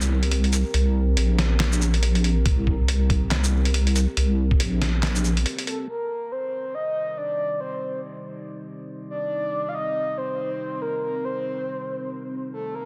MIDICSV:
0, 0, Header, 1, 5, 480
1, 0, Start_track
1, 0, Key_signature, -3, "minor"
1, 0, Tempo, 428571
1, 833, Time_signature, 4, 2, 24, 8
1, 14395, End_track
2, 0, Start_track
2, 0, Title_t, "Soft synth lead"
2, 0, Program_c, 0, 80
2, 6354, Note_on_c, 0, 69, 85
2, 6462, Note_off_c, 0, 69, 0
2, 6595, Note_on_c, 0, 70, 91
2, 7075, Note_on_c, 0, 72, 96
2, 7092, Note_off_c, 0, 70, 0
2, 7554, Note_on_c, 0, 75, 103
2, 7570, Note_off_c, 0, 72, 0
2, 8035, Note_on_c, 0, 74, 99
2, 8052, Note_off_c, 0, 75, 0
2, 8510, Note_off_c, 0, 74, 0
2, 8517, Note_on_c, 0, 72, 86
2, 8961, Note_off_c, 0, 72, 0
2, 10193, Note_on_c, 0, 74, 112
2, 10847, Note_on_c, 0, 77, 77
2, 10864, Note_off_c, 0, 74, 0
2, 10911, Note_on_c, 0, 75, 108
2, 10928, Note_off_c, 0, 77, 0
2, 11396, Note_on_c, 0, 72, 99
2, 11413, Note_off_c, 0, 75, 0
2, 12113, Note_on_c, 0, 70, 87
2, 12130, Note_off_c, 0, 72, 0
2, 12346, Note_off_c, 0, 70, 0
2, 12353, Note_on_c, 0, 70, 89
2, 12595, Note_on_c, 0, 72, 91
2, 12612, Note_off_c, 0, 70, 0
2, 13554, Note_off_c, 0, 72, 0
2, 14034, Note_on_c, 0, 69, 80
2, 14275, Note_on_c, 0, 70, 89
2, 14291, Note_off_c, 0, 69, 0
2, 14395, Note_off_c, 0, 70, 0
2, 14395, End_track
3, 0, Start_track
3, 0, Title_t, "Analog synth pad"
3, 0, Program_c, 1, 89
3, 0, Note_on_c, 1, 60, 78
3, 0, Note_on_c, 1, 67, 72
3, 0, Note_on_c, 1, 70, 87
3, 6549, Note_off_c, 1, 60, 0
3, 6549, Note_off_c, 1, 67, 0
3, 6576, Note_off_c, 1, 70, 0
3, 6593, Note_on_c, 1, 63, 79
3, 6594, Note_on_c, 1, 60, 74
3, 6594, Note_on_c, 1, 67, 66
3, 14228, Note_off_c, 1, 67, 0
3, 14256, Note_off_c, 1, 63, 0
3, 14274, Note_on_c, 1, 65, 69
3, 14395, Note_off_c, 1, 60, 0
3, 14395, Note_off_c, 1, 65, 0
3, 14395, End_track
4, 0, Start_track
4, 0, Title_t, "Wobble bass"
4, 0, Program_c, 2, 39
4, 0, Note_on_c, 2, 36, 98
4, 715, Note_off_c, 2, 36, 0
4, 830, Note_on_c, 2, 36, 98
4, 1299, Note_off_c, 2, 36, 0
4, 1311, Note_on_c, 2, 34, 94
4, 2740, Note_off_c, 2, 34, 0
4, 2750, Note_on_c, 2, 36, 98
4, 4555, Note_off_c, 2, 36, 0
4, 4673, Note_on_c, 2, 36, 97
4, 5140, Note_off_c, 2, 36, 0
4, 5153, Note_on_c, 2, 34, 91
4, 6113, Note_off_c, 2, 34, 0
4, 14395, End_track
5, 0, Start_track
5, 0, Title_t, "Drums"
5, 13, Note_on_c, 9, 82, 82
5, 125, Note_off_c, 9, 82, 0
5, 254, Note_on_c, 9, 42, 49
5, 353, Note_off_c, 9, 42, 0
5, 353, Note_on_c, 9, 42, 75
5, 465, Note_off_c, 9, 42, 0
5, 494, Note_on_c, 9, 42, 51
5, 591, Note_off_c, 9, 42, 0
5, 591, Note_on_c, 9, 42, 50
5, 591, Note_on_c, 9, 82, 80
5, 703, Note_off_c, 9, 42, 0
5, 703, Note_off_c, 9, 82, 0
5, 830, Note_on_c, 9, 42, 79
5, 942, Note_off_c, 9, 42, 0
5, 1311, Note_on_c, 9, 42, 76
5, 1423, Note_off_c, 9, 42, 0
5, 1552, Note_on_c, 9, 38, 57
5, 1552, Note_on_c, 9, 42, 49
5, 1664, Note_off_c, 9, 38, 0
5, 1664, Note_off_c, 9, 42, 0
5, 1791, Note_on_c, 9, 38, 115
5, 1791, Note_on_c, 9, 39, 84
5, 1791, Note_on_c, 9, 42, 77
5, 1903, Note_off_c, 9, 38, 0
5, 1903, Note_off_c, 9, 39, 0
5, 1903, Note_off_c, 9, 42, 0
5, 1932, Note_on_c, 9, 82, 84
5, 2031, Note_off_c, 9, 82, 0
5, 2031, Note_on_c, 9, 82, 64
5, 2143, Note_off_c, 9, 82, 0
5, 2171, Note_on_c, 9, 42, 52
5, 2270, Note_off_c, 9, 42, 0
5, 2270, Note_on_c, 9, 42, 74
5, 2382, Note_off_c, 9, 42, 0
5, 2411, Note_on_c, 9, 42, 51
5, 2512, Note_off_c, 9, 42, 0
5, 2512, Note_on_c, 9, 42, 50
5, 2624, Note_off_c, 9, 42, 0
5, 2751, Note_on_c, 9, 36, 108
5, 2751, Note_on_c, 9, 42, 80
5, 2863, Note_off_c, 9, 36, 0
5, 2863, Note_off_c, 9, 42, 0
5, 2991, Note_on_c, 9, 36, 56
5, 3103, Note_off_c, 9, 36, 0
5, 3231, Note_on_c, 9, 42, 82
5, 3343, Note_off_c, 9, 42, 0
5, 3471, Note_on_c, 9, 36, 96
5, 3472, Note_on_c, 9, 42, 53
5, 3583, Note_off_c, 9, 36, 0
5, 3584, Note_off_c, 9, 42, 0
5, 3711, Note_on_c, 9, 38, 109
5, 3711, Note_on_c, 9, 39, 86
5, 3711, Note_on_c, 9, 42, 81
5, 3823, Note_off_c, 9, 38, 0
5, 3823, Note_off_c, 9, 39, 0
5, 3823, Note_off_c, 9, 42, 0
5, 3852, Note_on_c, 9, 82, 80
5, 3964, Note_off_c, 9, 82, 0
5, 4092, Note_on_c, 9, 42, 53
5, 4191, Note_off_c, 9, 42, 0
5, 4191, Note_on_c, 9, 42, 80
5, 4303, Note_off_c, 9, 42, 0
5, 4333, Note_on_c, 9, 42, 54
5, 4432, Note_off_c, 9, 42, 0
5, 4432, Note_on_c, 9, 42, 53
5, 4432, Note_on_c, 9, 82, 80
5, 4544, Note_off_c, 9, 42, 0
5, 4544, Note_off_c, 9, 82, 0
5, 4672, Note_on_c, 9, 42, 82
5, 4784, Note_off_c, 9, 42, 0
5, 5053, Note_on_c, 9, 36, 60
5, 5152, Note_on_c, 9, 42, 81
5, 5165, Note_off_c, 9, 36, 0
5, 5264, Note_off_c, 9, 42, 0
5, 5394, Note_on_c, 9, 38, 58
5, 5394, Note_on_c, 9, 42, 54
5, 5506, Note_off_c, 9, 38, 0
5, 5506, Note_off_c, 9, 42, 0
5, 5633, Note_on_c, 9, 38, 115
5, 5633, Note_on_c, 9, 39, 89
5, 5633, Note_on_c, 9, 42, 83
5, 5745, Note_off_c, 9, 38, 0
5, 5745, Note_off_c, 9, 39, 0
5, 5745, Note_off_c, 9, 42, 0
5, 5774, Note_on_c, 9, 82, 78
5, 5872, Note_off_c, 9, 82, 0
5, 5872, Note_on_c, 9, 82, 59
5, 5984, Note_off_c, 9, 82, 0
5, 6015, Note_on_c, 9, 42, 54
5, 6113, Note_off_c, 9, 42, 0
5, 6113, Note_on_c, 9, 42, 81
5, 6225, Note_off_c, 9, 42, 0
5, 6255, Note_on_c, 9, 42, 54
5, 6354, Note_off_c, 9, 42, 0
5, 6354, Note_on_c, 9, 42, 55
5, 6466, Note_off_c, 9, 42, 0
5, 14395, End_track
0, 0, End_of_file